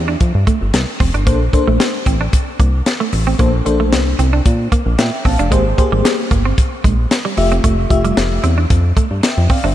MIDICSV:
0, 0, Header, 1, 6, 480
1, 0, Start_track
1, 0, Tempo, 530973
1, 1146, Time_signature, 4, 2, 24, 8
1, 8812, End_track
2, 0, Start_track
2, 0, Title_t, "FM electric piano"
2, 0, Program_c, 0, 5
2, 1140, Note_on_c, 0, 58, 80
2, 1142, Note_on_c, 0, 62, 75
2, 1145, Note_on_c, 0, 69, 79
2, 1147, Note_on_c, 0, 72, 91
2, 1249, Note_off_c, 0, 58, 0
2, 1250, Note_off_c, 0, 62, 0
2, 1251, Note_off_c, 0, 69, 0
2, 1252, Note_off_c, 0, 72, 0
2, 1381, Note_on_c, 0, 58, 82
2, 1384, Note_on_c, 0, 62, 79
2, 1387, Note_on_c, 0, 69, 71
2, 1389, Note_on_c, 0, 72, 96
2, 1787, Note_off_c, 0, 58, 0
2, 1789, Note_off_c, 0, 62, 0
2, 1790, Note_off_c, 0, 69, 0
2, 1792, Note_off_c, 0, 72, 0
2, 3060, Note_on_c, 0, 58, 83
2, 3064, Note_on_c, 0, 62, 77
2, 3065, Note_on_c, 0, 69, 77
2, 3068, Note_on_c, 0, 72, 91
2, 3169, Note_off_c, 0, 58, 0
2, 3171, Note_off_c, 0, 62, 0
2, 3171, Note_off_c, 0, 69, 0
2, 3173, Note_off_c, 0, 72, 0
2, 3302, Note_on_c, 0, 58, 80
2, 3304, Note_on_c, 0, 62, 78
2, 3307, Note_on_c, 0, 69, 74
2, 3308, Note_on_c, 0, 72, 93
2, 3708, Note_off_c, 0, 58, 0
2, 3709, Note_off_c, 0, 62, 0
2, 3710, Note_off_c, 0, 69, 0
2, 3711, Note_off_c, 0, 72, 0
2, 4505, Note_on_c, 0, 79, 64
2, 4509, Note_on_c, 0, 76, 51
2, 4733, Note_off_c, 0, 79, 0
2, 4736, Note_off_c, 0, 76, 0
2, 4747, Note_on_c, 0, 81, 71
2, 4752, Note_on_c, 0, 77, 59
2, 4859, Note_off_c, 0, 77, 0
2, 4867, Note_off_c, 0, 81, 0
2, 4870, Note_on_c, 0, 77, 61
2, 4876, Note_on_c, 0, 74, 53
2, 4978, Note_on_c, 0, 58, 84
2, 4981, Note_on_c, 0, 67, 74
2, 4983, Note_on_c, 0, 68, 78
2, 4987, Note_on_c, 0, 72, 96
2, 5088, Note_off_c, 0, 58, 0
2, 5089, Note_off_c, 0, 67, 0
2, 5091, Note_off_c, 0, 68, 0
2, 5092, Note_off_c, 0, 72, 0
2, 5100, Note_off_c, 0, 77, 0
2, 5102, Note_off_c, 0, 74, 0
2, 5222, Note_on_c, 0, 58, 86
2, 5224, Note_on_c, 0, 67, 78
2, 5226, Note_on_c, 0, 68, 81
2, 5230, Note_on_c, 0, 72, 89
2, 5628, Note_off_c, 0, 58, 0
2, 5629, Note_off_c, 0, 67, 0
2, 5630, Note_off_c, 0, 68, 0
2, 5632, Note_off_c, 0, 72, 0
2, 6661, Note_on_c, 0, 57, 79
2, 6665, Note_on_c, 0, 65, 78
2, 6666, Note_on_c, 0, 67, 75
2, 6669, Note_on_c, 0, 76, 90
2, 7053, Note_off_c, 0, 57, 0
2, 7055, Note_off_c, 0, 65, 0
2, 7056, Note_off_c, 0, 67, 0
2, 7057, Note_off_c, 0, 76, 0
2, 7141, Note_on_c, 0, 57, 83
2, 7144, Note_on_c, 0, 65, 80
2, 7146, Note_on_c, 0, 67, 80
2, 7148, Note_on_c, 0, 76, 93
2, 7548, Note_off_c, 0, 57, 0
2, 7549, Note_off_c, 0, 65, 0
2, 7550, Note_off_c, 0, 67, 0
2, 7551, Note_off_c, 0, 76, 0
2, 8345, Note_on_c, 0, 79, 59
2, 8350, Note_on_c, 0, 76, 55
2, 8573, Note_off_c, 0, 79, 0
2, 8576, Note_off_c, 0, 76, 0
2, 8587, Note_on_c, 0, 77, 71
2, 8592, Note_on_c, 0, 74, 55
2, 8707, Note_off_c, 0, 77, 0
2, 8710, Note_off_c, 0, 74, 0
2, 8715, Note_on_c, 0, 76, 59
2, 8720, Note_on_c, 0, 72, 53
2, 8812, Note_off_c, 0, 72, 0
2, 8812, Note_off_c, 0, 76, 0
2, 8812, End_track
3, 0, Start_track
3, 0, Title_t, "Clean electric guitar"
3, 0, Program_c, 1, 27
3, 72, Note_on_c, 1, 62, 68
3, 155, Note_off_c, 1, 62, 0
3, 425, Note_on_c, 1, 57, 78
3, 518, Note_off_c, 1, 57, 0
3, 907, Note_on_c, 1, 60, 80
3, 999, Note_off_c, 1, 60, 0
3, 1033, Note_on_c, 1, 62, 74
3, 1115, Note_off_c, 1, 62, 0
3, 1147, Note_on_c, 1, 58, 80
3, 1239, Note_off_c, 1, 58, 0
3, 1514, Note_on_c, 1, 57, 70
3, 1596, Note_off_c, 1, 57, 0
3, 1868, Note_on_c, 1, 60, 74
3, 1960, Note_off_c, 1, 60, 0
3, 1995, Note_on_c, 1, 62, 81
3, 2076, Note_off_c, 1, 62, 0
3, 2348, Note_on_c, 1, 58, 65
3, 2440, Note_off_c, 1, 58, 0
3, 2714, Note_on_c, 1, 57, 76
3, 2796, Note_off_c, 1, 57, 0
3, 2955, Note_on_c, 1, 60, 73
3, 3037, Note_off_c, 1, 60, 0
3, 3070, Note_on_c, 1, 58, 78
3, 3161, Note_off_c, 1, 58, 0
3, 3435, Note_on_c, 1, 57, 76
3, 3516, Note_off_c, 1, 57, 0
3, 3789, Note_on_c, 1, 60, 68
3, 3880, Note_off_c, 1, 60, 0
3, 3915, Note_on_c, 1, 62, 72
3, 3996, Note_off_c, 1, 62, 0
3, 4267, Note_on_c, 1, 58, 81
3, 4359, Note_off_c, 1, 58, 0
3, 4748, Note_on_c, 1, 60, 82
3, 4840, Note_off_c, 1, 60, 0
3, 4875, Note_on_c, 1, 62, 71
3, 4957, Note_off_c, 1, 62, 0
3, 4987, Note_on_c, 1, 56, 87
3, 5079, Note_off_c, 1, 56, 0
3, 5354, Note_on_c, 1, 55, 76
3, 5436, Note_off_c, 1, 55, 0
3, 5706, Note_on_c, 1, 58, 69
3, 5799, Note_off_c, 1, 58, 0
3, 5835, Note_on_c, 1, 60, 76
3, 5916, Note_off_c, 1, 60, 0
3, 6187, Note_on_c, 1, 56, 66
3, 6279, Note_off_c, 1, 56, 0
3, 6554, Note_on_c, 1, 55, 77
3, 6636, Note_off_c, 1, 55, 0
3, 6796, Note_on_c, 1, 60, 69
3, 6877, Note_off_c, 1, 60, 0
3, 6906, Note_on_c, 1, 57, 80
3, 6999, Note_off_c, 1, 57, 0
3, 7273, Note_on_c, 1, 55, 81
3, 7355, Note_off_c, 1, 55, 0
3, 7626, Note_on_c, 1, 60, 73
3, 7719, Note_off_c, 1, 60, 0
3, 7754, Note_on_c, 1, 62, 69
3, 7836, Note_off_c, 1, 62, 0
3, 8106, Note_on_c, 1, 57, 78
3, 8199, Note_off_c, 1, 57, 0
3, 8587, Note_on_c, 1, 60, 79
3, 8679, Note_off_c, 1, 60, 0
3, 8713, Note_on_c, 1, 62, 74
3, 8795, Note_off_c, 1, 62, 0
3, 8812, End_track
4, 0, Start_track
4, 0, Title_t, "Analog synth bass"
4, 0, Program_c, 2, 38
4, 0, Note_on_c, 2, 40, 92
4, 148, Note_off_c, 2, 40, 0
4, 188, Note_on_c, 2, 41, 99
4, 294, Note_off_c, 2, 41, 0
4, 315, Note_on_c, 2, 43, 97
4, 409, Note_off_c, 2, 43, 0
4, 554, Note_on_c, 2, 31, 85
4, 648, Note_off_c, 2, 31, 0
4, 665, Note_on_c, 2, 36, 98
4, 773, Note_off_c, 2, 36, 0
4, 906, Note_on_c, 2, 29, 93
4, 1013, Note_off_c, 2, 29, 0
4, 1031, Note_on_c, 2, 31, 95
4, 1146, Note_on_c, 2, 34, 110
4, 1160, Note_off_c, 2, 31, 0
4, 1348, Note_off_c, 2, 34, 0
4, 1515, Note_on_c, 2, 34, 93
4, 1609, Note_off_c, 2, 34, 0
4, 1865, Note_on_c, 2, 33, 100
4, 2067, Note_off_c, 2, 33, 0
4, 2347, Note_on_c, 2, 36, 86
4, 2548, Note_off_c, 2, 36, 0
4, 2827, Note_on_c, 2, 33, 98
4, 3028, Note_off_c, 2, 33, 0
4, 3067, Note_on_c, 2, 34, 112
4, 3268, Note_off_c, 2, 34, 0
4, 3309, Note_on_c, 2, 34, 96
4, 3548, Note_on_c, 2, 36, 99
4, 3562, Note_off_c, 2, 34, 0
4, 3749, Note_off_c, 2, 36, 0
4, 3787, Note_on_c, 2, 36, 87
4, 3988, Note_off_c, 2, 36, 0
4, 4029, Note_on_c, 2, 46, 108
4, 4230, Note_off_c, 2, 46, 0
4, 4393, Note_on_c, 2, 34, 92
4, 4488, Note_off_c, 2, 34, 0
4, 4509, Note_on_c, 2, 46, 97
4, 4614, Note_off_c, 2, 46, 0
4, 4747, Note_on_c, 2, 34, 97
4, 4853, Note_off_c, 2, 34, 0
4, 4874, Note_on_c, 2, 29, 91
4, 4988, Note_on_c, 2, 32, 111
4, 5002, Note_off_c, 2, 29, 0
4, 5189, Note_off_c, 2, 32, 0
4, 5353, Note_on_c, 2, 32, 93
4, 5448, Note_off_c, 2, 32, 0
4, 5705, Note_on_c, 2, 31, 96
4, 5907, Note_off_c, 2, 31, 0
4, 6186, Note_on_c, 2, 34, 82
4, 6388, Note_off_c, 2, 34, 0
4, 6667, Note_on_c, 2, 29, 107
4, 6869, Note_off_c, 2, 29, 0
4, 6906, Note_on_c, 2, 29, 109
4, 7108, Note_off_c, 2, 29, 0
4, 7145, Note_on_c, 2, 29, 95
4, 7347, Note_off_c, 2, 29, 0
4, 7388, Note_on_c, 2, 29, 90
4, 7589, Note_off_c, 2, 29, 0
4, 7626, Note_on_c, 2, 40, 85
4, 7828, Note_off_c, 2, 40, 0
4, 7867, Note_on_c, 2, 41, 107
4, 8068, Note_off_c, 2, 41, 0
4, 8233, Note_on_c, 2, 43, 91
4, 8328, Note_off_c, 2, 43, 0
4, 8474, Note_on_c, 2, 41, 92
4, 8568, Note_off_c, 2, 41, 0
4, 8713, Note_on_c, 2, 31, 91
4, 8808, Note_off_c, 2, 31, 0
4, 8812, End_track
5, 0, Start_track
5, 0, Title_t, "Muted clean electric guitar strokes"
5, 666, Note_on_c, 9, 29, 42
5, 757, Note_off_c, 9, 29, 0
5, 1388, Note_on_c, 9, 29, 49
5, 1478, Note_off_c, 9, 29, 0
5, 1628, Note_on_c, 9, 29, 41
5, 1718, Note_off_c, 9, 29, 0
5, 2829, Note_on_c, 9, 29, 49
5, 2919, Note_off_c, 9, 29, 0
5, 3309, Note_on_c, 9, 29, 49
5, 3399, Note_off_c, 9, 29, 0
5, 3548, Note_on_c, 9, 29, 40
5, 3639, Note_off_c, 9, 29, 0
5, 4507, Note_on_c, 9, 29, 41
5, 4598, Note_off_c, 9, 29, 0
5, 5228, Note_on_c, 9, 29, 48
5, 5319, Note_off_c, 9, 29, 0
5, 5467, Note_on_c, 9, 29, 41
5, 5557, Note_off_c, 9, 29, 0
5, 6669, Note_on_c, 9, 29, 44
5, 6759, Note_off_c, 9, 29, 0
5, 7147, Note_on_c, 9, 29, 47
5, 7237, Note_off_c, 9, 29, 0
5, 7387, Note_on_c, 9, 29, 43
5, 7477, Note_off_c, 9, 29, 0
5, 8347, Note_on_c, 9, 29, 42
5, 8437, Note_off_c, 9, 29, 0
5, 8812, End_track
6, 0, Start_track
6, 0, Title_t, "Drums"
6, 185, Note_on_c, 9, 42, 81
6, 188, Note_on_c, 9, 36, 111
6, 275, Note_off_c, 9, 42, 0
6, 278, Note_off_c, 9, 36, 0
6, 425, Note_on_c, 9, 36, 92
6, 427, Note_on_c, 9, 42, 81
6, 516, Note_off_c, 9, 36, 0
6, 518, Note_off_c, 9, 42, 0
6, 666, Note_on_c, 9, 42, 98
6, 667, Note_on_c, 9, 38, 112
6, 756, Note_off_c, 9, 42, 0
6, 758, Note_off_c, 9, 38, 0
6, 906, Note_on_c, 9, 36, 92
6, 906, Note_on_c, 9, 46, 70
6, 996, Note_off_c, 9, 36, 0
6, 997, Note_off_c, 9, 46, 0
6, 1036, Note_on_c, 9, 42, 45
6, 1126, Note_off_c, 9, 42, 0
6, 1146, Note_on_c, 9, 36, 95
6, 1146, Note_on_c, 9, 42, 96
6, 1236, Note_off_c, 9, 36, 0
6, 1236, Note_off_c, 9, 42, 0
6, 1386, Note_on_c, 9, 36, 96
6, 1389, Note_on_c, 9, 42, 69
6, 1476, Note_off_c, 9, 36, 0
6, 1479, Note_off_c, 9, 42, 0
6, 1627, Note_on_c, 9, 38, 114
6, 1630, Note_on_c, 9, 42, 91
6, 1718, Note_off_c, 9, 38, 0
6, 1720, Note_off_c, 9, 42, 0
6, 1865, Note_on_c, 9, 36, 88
6, 1867, Note_on_c, 9, 42, 79
6, 1955, Note_off_c, 9, 36, 0
6, 1957, Note_off_c, 9, 42, 0
6, 2107, Note_on_c, 9, 42, 87
6, 2108, Note_on_c, 9, 36, 117
6, 2197, Note_off_c, 9, 42, 0
6, 2199, Note_off_c, 9, 36, 0
6, 2346, Note_on_c, 9, 36, 90
6, 2349, Note_on_c, 9, 42, 76
6, 2437, Note_off_c, 9, 36, 0
6, 2439, Note_off_c, 9, 42, 0
6, 2587, Note_on_c, 9, 42, 95
6, 2589, Note_on_c, 9, 38, 104
6, 2678, Note_off_c, 9, 42, 0
6, 2679, Note_off_c, 9, 38, 0
6, 2826, Note_on_c, 9, 46, 68
6, 2917, Note_off_c, 9, 46, 0
6, 3067, Note_on_c, 9, 36, 97
6, 3067, Note_on_c, 9, 42, 93
6, 3157, Note_off_c, 9, 36, 0
6, 3157, Note_off_c, 9, 42, 0
6, 3310, Note_on_c, 9, 42, 75
6, 3400, Note_off_c, 9, 42, 0
6, 3548, Note_on_c, 9, 38, 108
6, 3551, Note_on_c, 9, 42, 92
6, 3639, Note_off_c, 9, 38, 0
6, 3641, Note_off_c, 9, 42, 0
6, 3788, Note_on_c, 9, 42, 74
6, 3879, Note_off_c, 9, 42, 0
6, 4028, Note_on_c, 9, 42, 84
6, 4029, Note_on_c, 9, 36, 114
6, 4118, Note_off_c, 9, 42, 0
6, 4119, Note_off_c, 9, 36, 0
6, 4267, Note_on_c, 9, 36, 91
6, 4269, Note_on_c, 9, 42, 77
6, 4357, Note_off_c, 9, 36, 0
6, 4360, Note_off_c, 9, 42, 0
6, 4507, Note_on_c, 9, 42, 94
6, 4509, Note_on_c, 9, 38, 107
6, 4597, Note_off_c, 9, 42, 0
6, 4599, Note_off_c, 9, 38, 0
6, 4747, Note_on_c, 9, 36, 85
6, 4747, Note_on_c, 9, 46, 71
6, 4837, Note_off_c, 9, 36, 0
6, 4837, Note_off_c, 9, 46, 0
6, 4877, Note_on_c, 9, 42, 47
6, 4967, Note_off_c, 9, 42, 0
6, 4988, Note_on_c, 9, 36, 94
6, 4988, Note_on_c, 9, 42, 99
6, 5078, Note_off_c, 9, 36, 0
6, 5079, Note_off_c, 9, 42, 0
6, 5227, Note_on_c, 9, 36, 98
6, 5231, Note_on_c, 9, 42, 71
6, 5317, Note_off_c, 9, 36, 0
6, 5322, Note_off_c, 9, 42, 0
6, 5470, Note_on_c, 9, 38, 116
6, 5473, Note_on_c, 9, 42, 95
6, 5561, Note_off_c, 9, 38, 0
6, 5563, Note_off_c, 9, 42, 0
6, 5705, Note_on_c, 9, 36, 93
6, 5708, Note_on_c, 9, 42, 73
6, 5796, Note_off_c, 9, 36, 0
6, 5799, Note_off_c, 9, 42, 0
6, 5947, Note_on_c, 9, 42, 85
6, 5948, Note_on_c, 9, 36, 115
6, 6038, Note_off_c, 9, 42, 0
6, 6039, Note_off_c, 9, 36, 0
6, 6186, Note_on_c, 9, 36, 88
6, 6190, Note_on_c, 9, 42, 78
6, 6277, Note_off_c, 9, 36, 0
6, 6280, Note_off_c, 9, 42, 0
6, 6427, Note_on_c, 9, 42, 93
6, 6429, Note_on_c, 9, 38, 104
6, 6518, Note_off_c, 9, 42, 0
6, 6519, Note_off_c, 9, 38, 0
6, 6665, Note_on_c, 9, 46, 74
6, 6756, Note_off_c, 9, 46, 0
6, 6796, Note_on_c, 9, 42, 47
6, 6887, Note_off_c, 9, 42, 0
6, 6906, Note_on_c, 9, 36, 101
6, 6906, Note_on_c, 9, 42, 94
6, 6997, Note_off_c, 9, 36, 0
6, 6997, Note_off_c, 9, 42, 0
6, 7146, Note_on_c, 9, 36, 95
6, 7149, Note_on_c, 9, 42, 67
6, 7236, Note_off_c, 9, 36, 0
6, 7239, Note_off_c, 9, 42, 0
6, 7274, Note_on_c, 9, 42, 49
6, 7364, Note_off_c, 9, 42, 0
6, 7388, Note_on_c, 9, 38, 116
6, 7390, Note_on_c, 9, 42, 94
6, 7478, Note_off_c, 9, 38, 0
6, 7480, Note_off_c, 9, 42, 0
6, 7626, Note_on_c, 9, 42, 75
6, 7717, Note_off_c, 9, 42, 0
6, 7867, Note_on_c, 9, 42, 84
6, 7868, Note_on_c, 9, 36, 115
6, 7957, Note_off_c, 9, 42, 0
6, 7958, Note_off_c, 9, 36, 0
6, 8105, Note_on_c, 9, 36, 92
6, 8108, Note_on_c, 9, 42, 76
6, 8196, Note_off_c, 9, 36, 0
6, 8198, Note_off_c, 9, 42, 0
6, 8346, Note_on_c, 9, 42, 96
6, 8347, Note_on_c, 9, 38, 101
6, 8436, Note_off_c, 9, 42, 0
6, 8438, Note_off_c, 9, 38, 0
6, 8584, Note_on_c, 9, 46, 70
6, 8586, Note_on_c, 9, 36, 92
6, 8675, Note_off_c, 9, 46, 0
6, 8676, Note_off_c, 9, 36, 0
6, 8812, End_track
0, 0, End_of_file